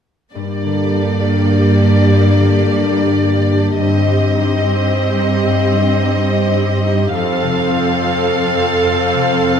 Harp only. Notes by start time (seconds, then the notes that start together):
0.35 G2
0.64 D3
0.94 D4
1.22 A#4
1.51 G4
1.80 D4
2.08 G2
2.37 D3
2.65 D4
2.94 A#4
3.23 G4
3.51 D4
3.79 G2
4.07 G3
4.35 D#4
4.64 C5
4.91 G4
5.18 D#4
5.45 G2
5.73 G3
6.01 D#4
6.29 C5
6.57 G4
6.84 D#4
7.13 F2
7.42 C3
7.70 F4
7.99 C5
8.28 A4
8.57 F4
8.85 F2
9.14 C3
9.42 F4